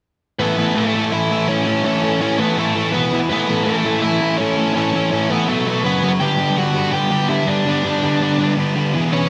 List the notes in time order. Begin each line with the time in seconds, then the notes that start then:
0.39 A2 E3 A3 B3 C#4 E4 A4 B4
0.57 A2 E3 A3 C#4 E4 A4
0.76 A2 E3 A3 C#4 E4 A4
0.94 A2 E3 A3 C#4 E4 A4
1.12 A2 E3 A3 C#4 E4 A4 E5
1.30 A2 E3 A3 C#4 E4 A4
1.48 A2 E3 A3 C#4 E4 A4 C#5
1.66 A2 E3 A3 C#4 E4 A4
1.84 A2 E3 A3 C#4 E4 A4 C#5
2.02 A2 E3 A3 C#4 E4 A4
2.20 A2 E3 A3 C#4 E4 A4 C#5
2.38 A2 E3 A3 B3 C#4 E4 A4 B4
2.57 A2 E3 A3 C#4 E4 A4
2.75 A2 E3 A3 C#4 E4 A4
2.92 E2 B2 E3 B3 E4 B4
3.11 E2 B2 E3 B3 E4 B4
3.30 A2 E3 A3 B3 C#4 E4 A4 B4
3.49 A2 E3 A3 C#4 E4 A4
3.65 A2 E3 A3 C#4 A4
3.69 E4 A4
3.84 A2 E3 A3 C#4 E4 A4
4.02 A2 E3 A3 C#4 E4 E5
4.06 A4
4.21 A2 E3 A3 C#4 E4 A4
4.37 A2 E3 A3 C#4 C#5
4.42 E4 A4
4.57 A2 E3 A3 C#4 E4 A4
4.74 A2 E3 A3 C#4 E4 C#5
4.78 A4
4.94 A2 E3 A3 C#4 E4 A4
5.11 A2 E3 A3 C#4 E4 A4 C#5
5.30 A2 E3 A3 B3 C#4 E4 A4 B4
5.48 B2 F#3 A3 B3 F#4 A4
5.66 B2 F#3 B3 F#4
5.84 F#2 C#3 F#3 B3 C#4 F#4 B4 C#5
6.02 F#2 C#3 F#3 C#4 F#4 C#5
6.20 G2 D3 G3 B3 D4 G4 B4 G5
6.38 G2 D3 G3 B3 D4 G4 B4
6.57 G2 D3 G3 B3 D4 F#4 G4 B4 F#5
6.75 G2 D3 G3 B3 D4 G4 B4
6.93 G2 D3 G3 B3 D4 G4 B4 G5
7.10 G2 D3 G3 B3 D4 G4 B4
7.28 G2 D3 G3 B3 D4 E4 G4 B4 E5
7.46 G2 D3 G3 B3 D4 G4 D5
7.50 B4
7.65 G2 D3 G3 B3 D4 G4 B4
7.84 G2 D3 G3 B3 D4 G4 B4
8.02 G2 D3 G3 B3 D4 G4 B4
8.21 G2 D3 G3 B3 D4 G4 B4
8.38 G2 D3 G3 B3 D4 G4 B4
8.57 G2 D3 G3 B3 D4 G4 B4
8.75 G2 D3 G3 B3 D4 G4 B4
8.93 E2 B2 E3 B3 E4 G#4 B4
9.12 E2 B2 E3 B3 C#4 E4 G#4 B4 C#5